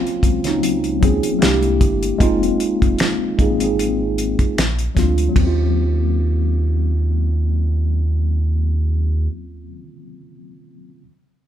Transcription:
0.00 0.20 F#3 loud
0.00 0.21 A#3 medium
0.00 0.21 C4 loud
0.00 0.22 C#4 loud
0.00 0.22 F4 loud
0.07 closed hi-hat soft
0.23 1.20 C#2 medium
0.23 kick medium
0.23 closed hi-hat medium
0.44 0.93 F#3 medium
0.44 0.93 A#3 medium
0.44 0.94 C4 medium
0.44 0.95 C#4 medium
0.44 snare soft
0.44 closed hi-hat soft
0.48 0.95 D#4 medium
0.63 closed hi-hat medium
0.84 closed hi-hat soft
1.00 1.40 F#3 medium
1.00 1.39 A#3 medium
1.00 1.41 C4 medium
1.00 1.42 C#4 medium
1.00 kick medium
1.00 closed hi-hat medium
1.05 1.42 G#4 medium
1.23 closed hi-hat soft
1.39 2.08 G#3 medium
1.39 2.09 A#3 medium
1.39 2.09 D4 medium
1.39 2.10 E4 medium
1.39 finger snap medium
1.39 snare loud
1.39 closed hi-hat medium
1.43 1.83 C2 medium
1.43 2.10 G4 medium
1.63 closed hi-hat soft
1.81 2.12 G1 medium
1.81 kick medium
1.81 closed hi-hat medium
2.03 closed hi-hat soft
2.19 2.52 F1 loud
2.19 3.21 G#3 loud
2.19 3.22 A#3 medium
2.19 3.22 C4 medium
2.19 3.23 D#4 medium
2.19 kick medium
2.19 closed hi-hat medium
2.23 3.23 F4 loud
2.43 closed hi-hat soft
2.60 closed hi-hat soft
2.82 2.96 F1 medium
2.82 kick medium
2.82 closed hi-hat soft
2.99 finger snap medium
2.99 snare medium
2.99 closed hi-hat medium
3.38 4.36 G#1 medium
3.38 3.57 G#3 medium
3.38 3.57 A#3 medium
3.38 3.57 C4 medium
3.38 3.58 D#4 medium
3.38 kick medium
3.38 closed hi-hat soft
3.42 3.59 G#4 medium
3.59 4.56 G#3 medium
3.59 4.57 A#3 medium
3.59 4.57 C4 medium
3.59 4.58 D#4 medium
3.59 closed hi-hat soft
3.64 4.59 G#4 medium
3.79 closed hi-hat medium
4.18 closed hi-hat medium
4.39 kick medium
4.39 closed hi-hat soft
4.58 4.89 A#1 medium
4.58 finger snap medium
4.58 snare medium
4.58 closed hi-hat medium
4.79 closed hi-hat soft
4.95 5.28 D2 medium
4.95 5.28 F#3 medium
4.95 5.30 G#3 medium
4.95 5.31 C4 medium
4.95 5.31 D4 medium
4.95 kick medium
4.95 snare soft
4.95 closed hi-hat medium
4.99 5.32 F4 medium
5.18 closed hi-hat soft
5.29 9.66 F#3 medium
5.29 9.70 A#3 medium
5.36 9.28 D#2 medium
5.36 9.75 C4 medium
5.36 kick medium
5.36 ride medium
5.42 9.79 C#4 medium
5.47 9.83 F4 medium

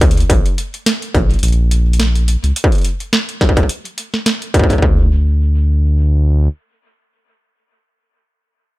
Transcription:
0.00 0.24 D2 loud
0.00 kick loud
0.00 closed hi-hat medium
0.11 closed hi-hat medium
0.17 closed hi-hat soft
0.20 closed hi-hat soft
0.30 0.41 A#1 medium
0.30 kick loud
0.30 closed hi-hat medium
0.46 closed hi-hat soft
0.58 closed hi-hat medium
0.74 closed hi-hat soft
0.86 snare loud
0.86 closed hi-hat medium
1.02 closed hi-hat soft
1.15 1.36 A#1 medium
1.15 kick medium
1.15 closed hi-hat soft
1.31 closed hi-hat soft
1.34 closed hi-hat soft
1.39 2.36 A#1 loud
1.39 closed hi-hat soft
1.43 closed hi-hat medium
1.48 closed hi-hat soft
1.52 closed hi-hat soft
1.71 closed hi-hat medium
1.93 closed hi-hat soft
2.00 snare loud
2.00 closed hi-hat medium
2.15 closed hi-hat soft
2.28 closed hi-hat medium
2.44 2.53 C#2 medium
2.44 closed hi-hat soft
2.56 closed hi-hat medium
2.64 kick loud
2.72 closed hi-hat soft
2.75 closed hi-hat soft
2.78 closed hi-hat soft
2.81 closed hi-hat soft
2.85 closed hi-hat medium
3.00 closed hi-hat soft
3.13 snare loud
3.29 closed hi-hat soft
3.41 kick medium
3.41 snare medium
3.41 closed hi-hat soft
3.49 kick medium
3.57 kick loud
3.57 closed hi-hat soft
3.63 kick soft
3.69 closed hi-hat medium
3.85 closed hi-hat soft
3.98 closed hi-hat medium
4.14 snare medium
4.26 snare loud
4.26 closed hi-hat medium
4.42 closed hi-hat soft
4.54 kick loud
4.54 closed hi-hat medium
4.59 kick medium
4.64 kick medium
4.70 kick medium
4.70 closed hi-hat soft
4.73 kick soft
4.78 kick soft
4.82 6.48 D2 medium
4.82 kick loud

